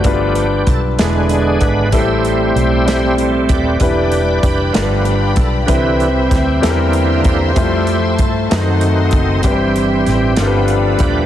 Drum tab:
HH |xxxxxx|xxxxxx|xxxxxx|xxxxxx|
SD |---o--|---o--|---o--|--oo--|
BD |o-o--o|o----o|o-o--o|o-o--o|

HH |xxxxxx|xxxxxx|
SD |---o--|--oo--|
BD |o-o--o|o----o|